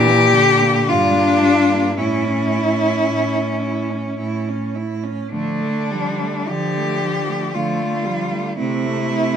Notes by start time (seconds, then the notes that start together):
Already playing: A#2 E3 G4
0.07 A#3
0.33 D3 D4
0.62 A#3
0.87 G2 G3 D4 F4
1.14 A#3
1.42 G3
1.69 A#3
1.97 A2 C#4 E4
2.24 C#4
2.52 E4
2.79 C#4
3.07 A2 E4
3.35 C#4
3.61 E4
3.90 C#4
4.19 A2 E4
4.48 C#4
4.75 E4
5.03 C#4
5.31 D3 F3 A3 D4
5.60 A3
5.91 F3 G3
6.21 A3
6.48 D3 F3 G4
6.77 A3
7.03 F3
7.28 A3
7.54 D3 F3 A3 F4
7.80 A3
8.05 F3 G3
8.32 A3
8.57 C3 A3 C4 E4
8.86 A3
9.10 C4